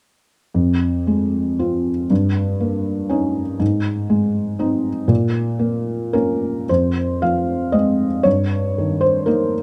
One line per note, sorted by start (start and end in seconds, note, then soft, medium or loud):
0.54 2.06 F2 soft
1.07 1.89 G#3 soft
1.59 2.06 C4 soft
1.59 2.06 F4 soft
2.10 3.57 G2 soft
2.60 3.40 A#3 soft
3.09 3.56 C#4 soft
3.09 3.56 D#4 soft
3.60 5.05 G#2 soft
4.10 4.89 G#3 soft
4.59 5.05 C4 soft
4.59 5.06 D#4 soft
5.08 6.64 A#2 soft
5.59 6.13 A#3 soft
6.13 6.66 A#3 soft
6.13 6.66 C#4 soft
6.13 6.69 A#4 medium
6.69 8.22 F2 soft
6.69 7.22 C5 medium
7.22 8.06 F3 soft
7.22 7.75 F5 medium
7.72 8.21 G#3 soft
7.72 8.21 C4 soft
7.72 8.24 D#5 medium
8.23 9.63 G2 soft
8.23 9.02 C#5 medium
8.78 9.60 D#3 soft
9.01 9.28 C5 medium
9.26 9.63 A#3 soft
9.26 9.63 D#4 soft
9.26 9.53 A#4 medium